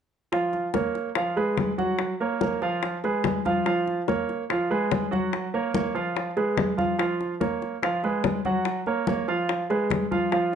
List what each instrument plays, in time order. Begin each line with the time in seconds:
0.32 grand piano F3 F4 F5, high bongo, high conga
0.53 high bongo, high conga
0.74 grand piano A#3 A#4 C#5, high bongo, high conga
0.95 high bongo, high conga
1.15 grand piano F3 F4 F5, high bongo, high conga
1.36 grand piano G#3 G#4 B4, high conga
1.57 high bongo, low bongo, high conga
1.78 grand piano F#3 F#4 F#5, high bongo, high conga
1.99 high bongo, high conga
2.20 grand piano A#3 A#4 C#5, high conga
2.41 grand piano A#3 A#4 C#5, high bongo, high conga
2.62 grand piano F3 F4 F5, high bongo, high conga
2.83 high bongo, high conga
3.04 grand piano G#3 G#4 B4, high bongo, high conga
3.24 high bongo, low bongo, high conga
3.45 grand piano F3 F4 F5, high bongo, high conga
3.66 grand piano F3 F4 F5, high bongo, high conga
3.87 high bongo, high conga
4.08 grand piano A#3 A#4 C#5, high bongo, high conga
4.29 high bongo, high conga
4.50 grand piano F3 F4 F5, high bongo, high conga
4.70 grand piano G#3 G#4 B4, high conga
4.91 high bongo, low bongo, high conga
5.11 grand piano F#3 F#4 F#5, high bongo, high conga
5.33 high bongo, high conga
5.54 grand piano A#3 A#4 C#5, high conga
5.74 grand piano A#3 A#4 C#5, high bongo, high conga
5.95 grand piano F3 F4 F5, high bongo, high conga
6.16 high bongo, high conga
6.37 grand piano G#3 G#4 B4, high bongo, high conga
6.57 high bongo, low bongo, high conga
6.77 grand piano F3 F4 F5, high bongo, high conga
6.99 grand piano F3 F4 F5, high bongo, high conga
7.21 high bongo, high conga
7.40 grand piano A#3 A#4 C#5, high bongo, high conga
7.62 high bongo, high conga
7.83 grand piano F3 F4 F5, high bongo, high conga
8.03 grand piano G#3 G#4 B4, high conga
8.24 high bongo, low bongo, high conga
8.45 grand piano F#3 F#4 F#5, high bongo, high conga
8.65 high bongo, high conga
8.86 grand piano A#3 A#4 C#5, high conga
9.07 grand piano A#3 A#4 C#5, high bongo, high conga
9.28 grand piano F3 F4 F5, high bongo, high conga
9.49 high bongo, high conga
9.70 grand piano G#3 G#4 B4, high bongo, high conga
9.90 high bongo, low bongo, high conga
10.11 grand piano F3 F4 F5, high bongo, high conga
10.32 grand piano F3 F4 F5, high bongo, high conga